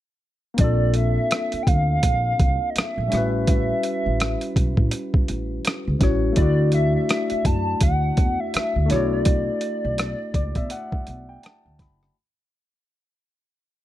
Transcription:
0.54 A#3 C4, closed hi-hat
0.59 A#1 D4 F4 D5, kick
0.64 A4
0.94 E5, closed hi-hat
1.31 cross-stick, closed hi-hat
1.52 muted upright bass stroke, closed hi-hat
1.63 G5
1.67 D2 F5, kick, closed hi-hat
2.03 A#1, kick, closed hi-hat
2.40 C2, kick, closed hi-hat
2.70 D#5
2.76 E5, muted upright bass stroke, cross-stick, closed hi-hat
2.98 A#1
3.08 G3 C#4
3.12 A1 E4 F#4, cross-stick, closed hi-hat
3.17 B4
3.47 E5, kick, closed hi-hat
3.83 closed hi-hat
4.06 A1
4.20 cross-stick, closed hi-hat
4.41 closed hi-hat
4.56 B1, kick, closed hi-hat
4.77 A2, kick
4.91 closed hi-hat
5.14 kick
5.28 A1, closed hi-hat
5.65 cross-stick, closed hi-hat
5.88 C#2
5.99 A1 G3 C#4 E4 F#4, kick, closed hi-hat
6.03 C#5, cross-stick
6.32 A3 D4, closed hi-hat
6.37 D2 E4 F#4 D5, kick
6.42 D5
6.72 E5, closed hi-hat
6.96 E5
7.09 cross-stick, closed hi-hat
7.30 muted upright bass stroke, closed hi-hat
7.45 F#2 A5, kick, closed hi-hat
7.81 D2 F#5, kick, closed hi-hat
8.17 E2, kick, closed hi-hat
8.40 E5
8.54 muted upright bass stroke, cross-stick, closed hi-hat
8.76 D2
8.86 A3 D4, closed hi-hat
8.90 B1 E4 F#4 C#5, cross-stick
8.96 D5
9.12 D5
9.25 kick, closed hi-hat
9.61 closed hi-hat
9.85 B1
9.98 cross-stick, closed hi-hat
10.34 C#2 D5, kick, closed hi-hat
10.55 B2 E5, kick, closed hi-hat
10.70 F#5, closed hi-hat
10.92 kick
11.07 B1, closed hi-hat
11.29 G5
11.43 A5, cross-stick, closed hi-hat
11.66 D2
11.79 F#1 B5, kick, cross-stick, closed hi-hat
12.03 cross-stick

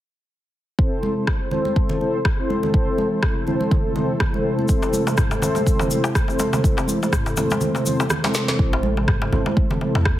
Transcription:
0.79 C3 E3 A3 C4 E4 A4 C5, kick
1.03 high conga
1.17 C4 E4 A4 C5
1.27 kick, cross-stick
1.51 C4 E4 A4 C5, high conga, low conga
1.65 high conga
1.76 kick
1.89 low conga
2.01 C4 E4 A4 C5, high conga
2.25 kick, cross-stick
2.39 C4 E4 A4 C5
2.50 high conga
2.63 low conga
2.74 C4 E4 A4 C5, kick
2.98 high conga
3.12 C4 E4 A4 C5
3.23 kick, cross-stick
3.47 C4 E4 A4 C5, high conga, low conga
3.60 high conga
3.71 kick, low conga
3.96 C4 E4 A4 C5, high conga, low conga
4.20 kick, cross-stick, low conga
4.34 C4 E4 A4 C5, high conga
4.59 high conga
4.68 C4 E4 A4 C5, kick, shaker
4.82 darbuka ka, darbuka tek, shaker
4.93 high conga, shaker
5.07 C4 E4 A4 C5, darbuka tek, shaker
5.17 kick, cross-stick, darbuka dum, shaker
5.31 darbuka tek, shaker
5.42 C4 E4 A4 C5, darbuka ka, high conga, low conga, shaker
5.55 darbuka tek, high conga, shaker
5.67 kick, shaker
5.79 darbuka tek, low conga, shaker
5.91 C4 E4 A4 C5, high conga, shaker
6.04 darbuka ka, darbuka tek, shaker
6.15 kick, cross-stick, shaker
6.28 C4 E4 A4 C5, darbuka tek, shaker
6.39 darbuka ka, high conga, shaker
6.53 darbuka tek, low conga, shaker
6.64 C4 E4 A4 C5, kick, shaker
6.77 darbuka ka, darbuka tek, shaker
6.88 high conga, shaker
7.02 C4 E4 A4 C5, darbuka tek, shaker
7.12 kick, cross-stick, darbuka dum, shaker
7.26 darbuka tek, shaker
7.37 C4 E4 A4 C5, darbuka ka, high conga, low conga, shaker
7.50 high conga, darbuka tek, shaker
7.61 low conga, shaker
7.75 darbuka ka, darbuka tek, shaker
7.86 C4 E4 A4 C5, high conga, low conga, shaker
8.00 darbuka tek, shaker
8.10 cross-stick, low conga, shaker
8.24 C4 E4 A4 C5, snare, high conga, darbuka tek, shaker
8.34 snare, shaker
8.48 snare, darbuka tek, high conga, shaker
8.59 A1 C3 E3 A3 C4 E4 A4 C5, kick
8.73 darbuka ka, darbuka tek
8.83 high conga
8.97 C4 E4 A4 C5, darbuka tek
9.08 kick, cross-stick, darbuka dum
9.22 darbuka tek
9.32 G1 C4 E4 A4 C5, darbuka ka, high conga, low conga
9.46 high conga, darbuka tek
9.57 kick
9.71 darbuka tek, low conga
9.81 C4 E4 A4 C5, darbuka ka, high conga
9.95 E2, darbuka tek
10.05 kick, cross-stick

